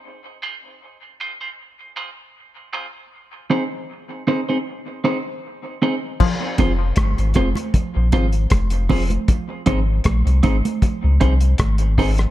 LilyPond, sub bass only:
\new Staff \with { instrumentName = "Sub bass" } { \clef bass \time 4/4 \key f \minor \tempo 4 = 78 r1 | r1 | r8 f,,8 g,,16 aes,,16 f,,16 r8 bes,,16 aes,,8 f,,4 | r8 aes,,8 bes,,16 c,16 aes,,16 r8 des,16 c,8 aes,,4 | }